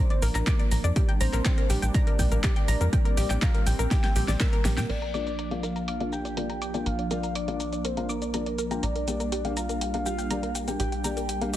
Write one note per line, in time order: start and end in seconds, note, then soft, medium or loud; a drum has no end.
0.00 0.92 F3 medium
0.00 0.92 A#3 medium
0.00 0.92 D4 medium
0.00 0.24 C5 loud
0.10 0.18 D5 medium
0.10 closed hi-hat soft
0.22 0.30 A#1 medium
0.22 0.71 A#4 medium
0.22 0.34 A#4 loud
0.22 open hi-hat loud
0.22 cabasa medium
0.35 0.43 A#1 medium
0.35 0.42 A#5 medium
0.35 clap soft
0.35 closed hi-hat soft
0.35 cabasa soft
0.47 0.55 D6 loud
0.47 kick loud
0.47 clap loud
0.47 closed hi-hat medium
0.47 cabasa soft
0.59 0.64 D5 medium
0.59 closed hi-hat soft
0.71 0.80 A#1 medium
0.71 0.79 A#5 medium
0.71 open hi-hat medium
0.71 cabasa medium
0.84 0.92 F2 medium
0.84 0.91 D5 medium
0.84 closed hi-hat soft
0.84 cabasa soft
0.96 4.86 G3 medium
0.96 1.07 G4 loud
0.96 kick loud
0.96 closed hi-hat medium
0.96 cabasa soft
1.09 1.16 G5 medium
1.09 closed hi-hat soft
1.21 1.29 A#1 loud
1.21 1.66 C5 loud
1.21 1.28 A#5 loud
1.21 open hi-hat loud
1.21 cabasa medium
1.33 1.41 A#1 medium
1.33 1.38 A#4 medium
1.33 clap soft
1.33 closed hi-hat soft
1.33 cabasa soft
1.45 1.53 G5 medium
1.45 kick loud
1.45 clap loud
1.45 closed hi-hat medium
1.45 cabasa soft
1.58 1.65 A#4 medium
1.58 closed hi-hat soft
1.70 1.78 A#1 medium
1.70 1.81 G4 loud
1.70 open hi-hat loud
1.70 cabasa medium
1.82 1.90 A#1 medium
1.82 1.90 G5 medium
1.82 closed hi-hat soft
1.82 cabasa soft
1.94 2.40 D5 medium
1.94 2.02 A#5 loud
1.94 kick loud
1.94 closed hi-hat medium
1.94 cabasa soft
2.07 2.11 A#4 medium
2.07 closed hi-hat soft
2.19 2.27 A#1 medium
2.19 2.27 G5 medium
2.19 kick medium
2.19 open hi-hat loud
2.19 cabasa medium
2.32 2.39 A#1 medium
2.32 2.39 A#4 medium
2.32 closed hi-hat soft
2.32 cabasa soft
2.44 2.55 G4 loud
2.44 2.89 D5 medium
2.44 kick loud
2.44 clap loud
2.44 closed hi-hat loud
2.44 cabasa soft
2.56 2.63 G5 medium
2.56 closed hi-hat soft
2.68 2.76 A#1 medium
2.68 2.76 A#5 loud
2.68 open hi-hat loud
2.68 cabasa medium
2.81 2.88 F2 medium
2.81 2.85 A#4 medium
2.81 closed hi-hat soft
2.81 cabasa soft
2.93 3.44 D5 loud
2.93 3.00 G5 medium
2.93 kick loud
2.93 closed hi-hat medium
2.93 cabasa soft
3.05 3.13 A#4 medium
3.05 closed hi-hat soft
3.17 3.25 A#1 loud
3.17 3.29 G4 loud
3.17 open hi-hat loud
3.17 cabasa medium
3.30 3.38 A#1 medium
3.30 3.37 G5 medium
3.30 clap soft
3.30 closed hi-hat soft
3.30 cabasa soft
3.42 3.68 F5 loud
3.42 3.50 A#5 loud
3.42 kick loud
3.42 clap loud
3.42 closed hi-hat medium
3.42 cabasa soft
3.55 3.59 A#4 medium
3.55 closed hi-hat soft
3.67 3.75 A#1 medium
3.67 3.74 G5 medium
3.67 4.40 G5 loud
3.67 open hi-hat loud
3.67 cabasa medium
3.79 3.87 A#1 medium
3.79 3.86 A#4 medium
3.79 closed hi-hat soft
3.79 cabasa soft
3.91 4.03 G4 loud
3.91 kick loud
3.91 snare medium
3.91 closed hi-hat loud
3.91 cabasa soft
4.04 4.11 G5 medium
4.04 snare medium
4.04 closed hi-hat soft
4.16 4.24 A#1 loud
4.16 4.23 G4 medium
4.16 open hi-hat loud
4.16 cabasa medium
4.28 4.36 A#1 medium
4.28 4.33 D5 medium
4.28 snare medium
4.28 closed hi-hat soft
4.28 cabasa soft
4.40 4.91 A#4 medium
4.40 4.48 E6 loud
4.40 kick loud
4.40 snare medium
4.40 clap loud
4.40 closed hi-hat loud
4.40 cabasa soft
4.53 4.60 A#4 medium
4.53 closed hi-hat soft
4.65 4.79 A#1 medium
4.65 4.73 G4 medium
4.65 snare medium
4.65 open hi-hat loud
4.65 cabasa medium
4.77 4.85 A#2 medium
4.77 4.82 G5 medium
4.77 snare medium
4.77 closed hi-hat soft
4.77 cabasa soft
4.90 6.84 A#1 medium
4.90 11.57 A#3 medium
4.90 5.01 A#4 loud
4.90 5.13 D5 loud
4.90 closed hi-hat medium
4.90 crash medium
4.90 cabasa soft
5.02 5.09 A#5 medium
5.02 closed hi-hat soft
5.14 5.26 A#3 medium
5.14 5.26 D4 medium
5.14 5.26 F4 medium
5.14 5.65 D5 loud
5.14 5.26 D5 medium
5.14 5.22 D6 medium
5.14 closed hi-hat medium
5.14 cabasa medium
5.27 5.31 D5 medium
5.27 closed hi-hat soft
5.27 cabasa soft
5.39 5.46 A#5 medium
5.39 closed hi-hat medium
5.39 cabasa soft
5.51 5.58 A#3 medium
5.51 5.58 D4 medium
5.51 5.58 F4 medium
5.51 5.59 D5 medium
5.51 5.58 F5 loud
5.51 closed hi-hat soft
5.63 5.75 A#4 medium
5.63 5.87 F5 medium
5.63 closed hi-hat medium
5.63 cabasa medium
5.76 5.83 A#5 medium
5.76 closed hi-hat soft
5.76 cabasa soft
5.88 6.11 F5 loud
5.88 5.96 D6 medium
5.88 closed hi-hat medium
5.88 cabasa soft
6.00 6.11 A#3 medium
6.00 6.11 D4 medium
6.00 6.11 F4 medium
6.00 6.05 D5 medium
6.00 6.11 F5 medium
6.00 closed hi-hat soft
6.12 6.35 G5 loud
6.12 6.20 A#5 medium
6.12 cabasa medium
6.25 6.32 D5 medium
6.25 closed hi-hat soft
6.25 cabasa soft
6.37 6.44 A#3 medium
6.37 6.44 D4 medium
6.37 6.44 F4 medium
6.37 6.48 A#4 medium
6.37 6.44 D5 medium
6.37 closed hi-hat medium
6.37 cabasa soft
6.50 6.57 A#5 medium
6.50 closed hi-hat soft
6.62 6.69 D6 medium
6.62 closed hi-hat medium
6.62 cabasa medium
6.74 6.85 A#3 medium
6.74 6.85 D4 medium
6.74 6.85 F4 medium
6.74 6.79 D5 medium
6.74 6.85 G5 medium
6.74 closed hi-hat soft
6.74 cabasa soft
6.86 8.81 A#1 medium
6.86 7.10 F5 loud
6.86 6.94 A#5 medium
6.86 closed hi-hat medium
6.86 cabasa soft
6.99 7.06 D5 medium
6.99 closed hi-hat soft
7.11 7.22 A#3 medium
7.11 7.22 D4 medium
7.11 7.22 F4 medium
7.11 7.22 A#4 loud
7.11 7.22 D5 medium
7.11 7.34 F5 loud
7.11 closed hi-hat medium
7.11 cabasa medium
7.23 7.31 A#5 medium
7.23 closed hi-hat soft
7.23 cabasa soft
7.35 7.86 D5 loud
7.35 7.43 D6 medium
7.35 closed hi-hat medium
7.35 cabasa soft
7.48 7.55 A#3 medium
7.48 7.55 D4 medium
7.48 7.55 F4 medium
7.48 7.52 D5 medium
7.48 7.55 F5 loud
7.48 closed hi-hat soft
7.60 7.68 A#5 medium
7.60 closed hi-hat medium
7.60 cabasa medium
7.73 7.80 D5 medium
7.73 closed hi-hat soft
7.73 cabasa soft
7.85 7.96 A#4 medium
7.85 8.11 C5 medium
7.85 closed hi-hat medium
7.85 cabasa soft
7.97 8.08 A#3 medium
7.97 8.08 D4 medium
7.97 8.08 F4 medium
7.97 8.08 F5 medium
7.97 8.04 A#5 medium
7.97 closed hi-hat soft
8.09 8.33 A#4 medium
8.09 8.17 D6 loud
8.09 cabasa medium
8.22 8.26 D5 medium
8.22 closed hi-hat soft
8.22 cabasa soft
8.34 8.41 A#3 medium
8.34 8.41 D4 medium
8.34 8.41 F4 medium
8.34 8.85 A#4 medium
8.34 8.41 D5 medium
8.34 8.41 A#5 medium
8.34 closed hi-hat medium
8.34 cabasa soft
8.46 8.54 D5 medium
8.46 closed hi-hat soft
8.58 8.70 A#4 loud
8.58 closed hi-hat medium
8.58 cabasa medium
8.71 8.82 A#3 medium
8.71 8.82 D4 medium
8.71 8.82 F4 medium
8.71 8.82 G5 medium
8.71 8.78 A#5 medium
8.71 closed hi-hat soft
8.71 cabasa soft
8.83 10.77 A#1 medium
8.83 11.57 G3 medium
8.83 9.07 D5 loud
8.83 8.91 A#5 loud
8.83 closed hi-hat medium
8.83 cabasa soft
8.96 9.00 A#4 medium
8.96 closed hi-hat soft
9.08 9.19 A#3 medium
9.08 9.19 D4 medium
9.08 9.19 G4 medium
9.08 9.19 D5 medium
9.08 9.58 D5 loud
9.08 9.15 G5 medium
9.08 closed hi-hat medium
9.08 cabasa medium
9.20 9.27 A#4 medium
9.20 closed hi-hat soft
9.20 cabasa soft
9.32 9.44 G4 loud
9.32 closed hi-hat medium
9.32 cabasa soft
9.45 9.52 A#3 medium
9.45 9.52 D4 medium
9.45 9.52 G4 medium
9.45 9.52 F5 loud
9.45 9.52 G5 medium
9.45 closed hi-hat soft
9.57 10.05 F5 loud
9.57 9.64 A#5 loud
9.57 closed hi-hat medium
9.57 cabasa medium
9.69 9.74 A#4 medium
9.69 closed hi-hat soft
9.69 cabasa soft
9.81 9.89 G5 medium
9.81 closed hi-hat medium
9.81 cabasa soft
9.94 10.05 A#3 medium
9.94 10.05 D4 medium
9.94 10.05 G4 medium
9.94 10.01 A#4 medium
9.94 10.05 F5 medium
9.94 closed hi-hat soft
10.06 10.17 G4 loud
10.06 10.52 F5 medium
10.06 cabasa medium
10.18 10.26 G5 medium
10.18 closed hi-hat soft
10.18 cabasa soft
10.31 10.38 A#3 medium
10.31 10.38 D4 medium
10.31 10.38 G4 medium
10.31 10.38 D5 medium
10.31 10.38 A#5 medium
10.31 closed hi-hat medium
10.31 cabasa soft
10.43 10.47 A#4 medium
10.43 closed hi-hat soft
10.55 10.63 G5 medium
10.55 closed hi-hat medium
10.55 cabasa medium
10.68 10.79 A#3 medium
10.68 10.79 D4 medium
10.68 10.79 G4 medium
10.68 10.75 A#4 medium
10.68 10.79 G5 medium
10.68 closed hi-hat soft
10.68 cabasa soft
10.80 11.57 A#1 medium
10.80 10.91 G4 medium
10.80 11.03 G5 loud
10.80 closed hi-hat medium
10.80 cabasa soft
10.92 11.00 G5 medium
10.92 closed hi-hat soft
11.04 11.16 A#3 medium
11.04 11.16 D4 medium
11.04 11.16 G4 medium
11.04 11.16 D5 medium
11.04 11.50 G5 loud
11.04 11.12 A#5 loud
11.04 closed hi-hat medium
11.04 cabasa medium
11.17 11.21 A#4 medium
11.17 closed hi-hat soft
11.17 cabasa soft
11.29 11.37 G5 medium
11.29 closed hi-hat medium
11.29 cabasa soft
11.41 11.48 A#3 medium
11.41 11.48 D4 medium
11.41 11.48 G4 medium
11.41 11.49 A#4 medium
11.41 11.48 F5 loud
11.41 closed hi-hat soft
11.53 11.57 G4 loud
11.53 11.57 D#5 medium
11.53 closed hi-hat medium